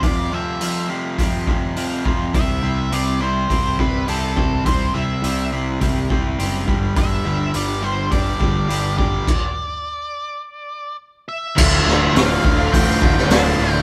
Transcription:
Already playing: clean electric guitar F3 C4 F4
0.02 clean electric guitar F2, overdriven electric guitar F2 C3 F3, lead electric guitar D5, kick, open hi-hat
0.31 overdriven electric guitar F2 C3 F3, clean electric guitar G3, lead electric guitar E5
0.60 overdriven electric guitar F2 C3 F3, clean electric guitar F3, open hi-hat
0.89 overdriven electric guitar F2 C3 F3, clean electric guitar G3
1.18 overdriven electric guitar F2 C3 F3, clean electric guitar C4, kick, open hi-hat
1.47 overdriven electric guitar F2 C3 F3, clean electric guitar F3, kick
1.76 overdriven electric guitar F2 C3 F3, clean electric guitar C4, open hi-hat
2.05 overdriven electric guitar F2 C3 F3, clean electric guitar F4, kick
2.34 picked electric bass C2, overdriven electric guitar C3 G3 C4, clean electric guitar C3, lead electric guitar E5, kick, open hi-hat
2.62 picked electric bass C2, overdriven electric guitar C3 G3 C4, clean electric guitar E4
2.91 picked electric bass C2, overdriven electric guitar C3 G3 C4, clean electric guitar C4, lead electric guitar D5, open hi-hat
3.20 overdriven electric guitar C3 G3 C4, clean electric guitar E4, lead electric guitar C5
3.49 picked electric bass C2, overdriven electric guitar C3 G3 C4, clean electric guitar G4, kick, open hi-hat
3.79 picked electric bass C2, overdriven electric guitar C3 G3 C4, clean electric guitar C4, lead electric guitar B4, kick
4.07 picked electric bass C2, overdriven electric guitar C3 G3 C4, clean electric guitar G4, lead electric guitar A4, open hi-hat
4.36 picked electric bass C2, overdriven electric guitar C3 G3 C4, clean electric guitar C5, kick
4.65 picked electric bass C2, overdriven electric guitar C3 G3 C4, clean electric guitar C3, lead electric guitar C5, kick, open hi-hat
4.94 picked electric bass C2, overdriven electric guitar C3 G3 C4, clean electric guitar E4, lead electric guitar E5
5.23 picked electric bass C2, overdriven electric guitar C3 G3 C4, clean electric guitar C4, open hi-hat
5.52 overdriven electric guitar C3 G3 C4, clean electric guitar E4
5.80 picked electric bass C2, overdriven electric guitar C3 G3 C4, clean electric guitar G4, kick, open hi-hat
6.09 picked electric bass C2, overdriven electric guitar C3 G3 C4, clean electric guitar C4, kick
6.39 picked electric bass F#1, overdriven electric guitar C3 G3 C4, clean electric guitar G4, open hi-hat
6.67 picked electric bass G1, overdriven electric guitar G2 D3 G3, clean electric guitar G2, kick
6.96 picked electric bass G1, overdriven electric guitar G2 D3 G3, clean electric guitar G2, lead electric guitar E5, kick, open hi-hat
7.24 picked electric bass G1, overdriven electric guitar G2 D3 G3, clean electric guitar B3
7.53 picked electric bass G1, overdriven electric guitar G2 D3 G3, clean electric guitar G3, lead electric guitar D5, open hi-hat
7.82 overdriven electric guitar G2 D3 G3, clean electric guitar B3, lead electric guitar C5
8.10 picked electric bass G1, overdriven electric guitar G2 D3 G3, clean electric guitar D4, lead electric guitar D5, kick, open hi-hat
8.39 picked electric bass G1, overdriven electric guitar G2 D3 G3, clean electric guitar G3, kick
8.68 picked electric bass G1, overdriven electric guitar G2 D3 G3, clean electric guitar D4, open hi-hat
8.97 picked electric bass G1, overdriven electric guitar G2 D3 G3, clean electric guitar G4, lead electric guitar D5, kick
9.28 kick, crash
11.29 lead electric guitar E5
11.56 picked electric bass D1, overdriven electric guitar D2 A2 D3 A3 F4, kick, crash
11.86 picked electric bass D1, distorted electric guitar A2 D3 A3 F4, snare
11.99 overdriven electric guitar D3 A3 F4
12.13 picked electric bass D1, overdriven electric guitar D2 A2 D3 A3 F4, lead electric guitar F5, snare, open hi-hat
12.42 picked electric bass D1, overdriven electric guitar A2 D3 A3 F4, kick
12.57 overdriven electric guitar D3 A3 F4
12.72 picked electric bass A1, distorted electric guitar A2 D3 A3 F4, lead electric guitar G5, kick, open hi-hat
12.86 overdriven electric guitar D3 A3 F4
13.00 picked electric bass D1, overdriven electric guitar A2 D3 A3 F4, kick
13.16 distorted electric guitar D3 A3 F4, muted overdriven electric guitar stroke, snare
13.29 picked electric bass D1, overdriven electric guitar D2 A2 D3 A3 F4, lead electric guitar A5, snare, open hi-hat
13.58 picked electric bass D1, overdriven electric guitar A2 D3 A3 F4
13.72 distorted electric guitar D3 A3 F4, lead electric guitar G5, muted overdriven electric guitar stroke

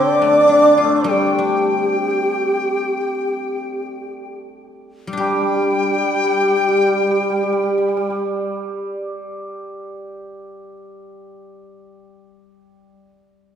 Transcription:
Already playing: guzheng D3, hammered dulcimer C4 G4, xiao D5, dizi D6
0.05 hammered dulcimer D4
0.12 hammered dulcimer D4
0.20 guzheng A3, hammered dulcimer D4
0.25 hammered dulcimer D4
0.33 hammered dulcimer D4
0.42 hammered dulcimer D4
0.49 hammered dulcimer D4, guzheng D4
0.59 hammered dulcimer D4
0.66 hammered dulcimer D4
0.78 guzheng F4
0.84 hammered dulcimer A3
1.04 guzheng G3, dizi G5
1.11 hammered dulcimer G3, xiao G4
1.39 guzheng D4
5.07 guzheng G3
5.13 guzheng D4
5.17 hammered dulcimer G3, guzheng G4, xiao G4, dizi G5
5.32 hammered dulcimer G3
5.42 hammered dulcimer G3
5.54 hammered dulcimer G3
5.62 hammered dulcimer G3
5.73 hammered dulcimer G3
5.84 hammered dulcimer G3
5.95 hammered dulcimer G3
6.05 hammered dulcimer G3
6.14 hammered dulcimer G3
6.24 hammered dulcimer G3
6.34 hammered dulcimer G3
6.43 hammered dulcimer G3
6.57 hammered dulcimer G3
6.69 hammered dulcimer G3
6.78 hammered dulcimer G3
6.88 hammered dulcimer G3
7.00 hammered dulcimer G3
7.11 hammered dulcimer G3
7.20 hammered dulcimer G3
7.30 hammered dulcimer G3
7.43 hammered dulcimer G3
7.53 hammered dulcimer G3
7.63 hammered dulcimer G3
7.78 hammered dulcimer G3
7.88 hammered dulcimer G3
7.97 hammered dulcimer G3
8.10 hammered dulcimer G3

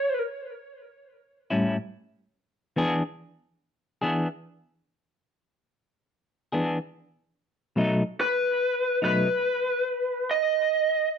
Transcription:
Already playing: lead electric guitar C#5
1.50 clean electric guitar A2 G3 C#4 E4
2.76 clean electric guitar E3 B3 D4 G#4
4.02 clean electric guitar E3 B3 D4 G#4
6.52 clean electric guitar E3 B3 D4 G#4
7.76 clean electric guitar B2 F#3 A3 D#4
8.21 lead electric guitar B4
9.02 clean electric guitar B2 F#3 A3 D#4, lead electric guitar B4
10.31 lead electric guitar D#5

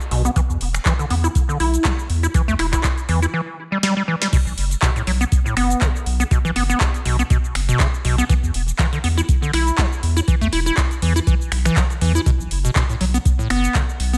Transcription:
0.01 shaker
0.11 sub bass B1, acid bass B2, open hi-hat
0.25 acid bass B3, closed hi-hat, shaker
0.36 acid bass E3, kick, closed hi-hat, shaker
0.50 sub bass E2, shaker
0.61 sub bass E1, open hi-hat
0.74 finger snap, shaker
0.85 acid bass E3, kick, clap, closed hi-hat, shaker
0.99 acid bass D3, closed hi-hat, shaker
1.10 sub bass E2, acid bass B3, open hi-hat
1.24 acid bass E4, closed hi-hat, shaker
1.35 kick, closed hi-hat, shaker
1.49 acid bass D3, shaker
1.60 sub bass B1, acid bass E4, open hi-hat
1.74 closed hi-hat, shaker
1.85 acid bass E3, kick, clap, closed hi-hat, shaker
1.99 shaker
2.10 sub bass E2, open hi-hat
2.23 acid bass E4, closed hi-hat, shaker
2.34 acid bass E3, kick, closed hi-hat, shaker
2.48 sub bass E2, acid bass A3, shaker
2.59 sub bass E1, acid bass E4, finger snap, open hi-hat
2.72 acid bass E4, finger snap, kick, clap, closed hi-hat, shaker
2.84 kick, clap, closed hi-hat, shaker
2.98 closed hi-hat, shaker
3.09 sub bass E2, acid bass E3, open hi-hat
3.22 acid bass E4, closed hi-hat, shaker
3.34 acid bass E3
3.72 acid bass G3
3.83 acid bass G3, snare
3.97 acid bass G3
4.08 acid bass E3
4.22 acid bass G3, snare
4.33 acid bass B2, kick, closed hi-hat, crash, shaker
4.46 sub bass B1, shaker
4.58 sub bass F#1, open hi-hat
4.71 closed hi-hat, shaker
4.82 acid bass B2, kick, clap, closed hi-hat, shaker
4.96 acid bass A2, closed hi-hat, shaker
5.07 sub bass B1, acid bass F#3, open hi-hat
5.21 acid bass B3, closed hi-hat, shaker
5.32 kick, closed hi-hat, shaker
5.46 acid bass A2, shaker
5.57 sub bass F#1, acid bass B3, finger snap, open hi-hat
5.70 closed hi-hat, shaker
5.81 acid bass B2, kick, clap, closed hi-hat, shaker
5.96 shaker
6.06 sub bass B1, open hi-hat
6.20 acid bass B3, closed hi-hat, shaker
6.31 acid bass B2, kick, closed hi-hat, shaker
6.45 sub bass B1, acid bass E3, shaker
6.56 sub bass F#1, acid bass B3, open hi-hat
6.70 acid bass B3, closed hi-hat, shaker
6.80 kick, clap, closed hi-hat, shaker
6.94 closed hi-hat, shaker
7.05 sub bass B1, acid bass B2, open hi-hat
7.19 acid bass B3, closed hi-hat, shaker
7.30 acid bass B2, kick, closed hi-hat, shaker
7.45 shaker
7.55 sub bass F#1, finger snap, open hi-hat
7.69 acid bass B2, closed hi-hat, shaker
7.80 acid bass C#3, kick, clap, closed hi-hat, shaker
7.94 shaker
8.05 sub bass B1, acid bass B2, open hi-hat
8.18 acid bass B3, closed hi-hat, shaker
8.29 acid bass E3, kick, closed hi-hat, shaker
8.43 sub bass E2, shaker
8.54 sub bass E1, open hi-hat
8.68 closed hi-hat, shaker
8.79 acid bass E3, kick, clap, closed hi-hat, shaker
8.93 acid bass D3, closed hi-hat, shaker
9.04 sub bass E2, acid bass B3, open hi-hat
9.17 acid bass E4, closed hi-hat, shaker
9.29 kick, closed hi-hat, shaker
9.42 acid bass D3, shaker
9.53 sub bass B1, acid bass E4, finger snap, open hi-hat
9.67 closed hi-hat, shaker
9.78 acid bass E3, kick, clap, closed hi-hat, shaker
9.93 shaker
10.03 sub bass E2, open hi-hat
10.17 acid bass E4, closed hi-hat, shaker
10.28 acid bass E3, kick, closed hi-hat, shaker
10.41 sub bass E2, acid bass A3, closed hi-hat, shaker
10.53 sub bass E1, acid bass E4, open hi-hat
10.66 acid bass E4, closed hi-hat, shaker
10.77 kick, clap, closed hi-hat, shaker
10.91 closed hi-hat, shaker
11.02 sub bass E2, acid bass E3, open hi-hat
11.16 acid bass E4, closed hi-hat, shaker
11.27 acid bass E3, kick, closed hi-hat, shaker
11.41 shaker
11.52 sub bass B1, finger snap, open hi-hat
11.65 acid bass E3, finger snap, closed hi-hat, shaker
11.76 acid bass F#3, kick, clap, closed hi-hat, shaker
11.90 closed hi-hat, shaker
12.01 sub bass E2, acid bass E3, open hi-hat
12.15 acid bass E4, closed hi-hat, shaker
12.26 acid bass B2, kick, closed hi-hat, shaker
12.40 sub bass B1, shaker
12.51 sub bass F#1, open hi-hat
12.65 acid bass B2, closed hi-hat, shaker
12.76 acid bass B2, kick, clap, closed hi-hat, shaker
12.89 acid bass A2, closed hi-hat, shaker
13.01 sub bass B1, acid bass F#3, open hi-hat
13.14 acid bass B3, closed hi-hat, shaker
13.25 kick, closed hi-hat, shaker
13.39 acid bass A2, shaker
13.50 sub bass F#1, acid bass B3, finger snap, open hi-hat
13.64 closed hi-hat, shaker
13.75 acid bass B2, kick, clap, closed hi-hat, shaker
13.89 shaker
14.00 sub bass B1, open hi-hat
14.13 acid bass B3, closed hi-hat, shaker

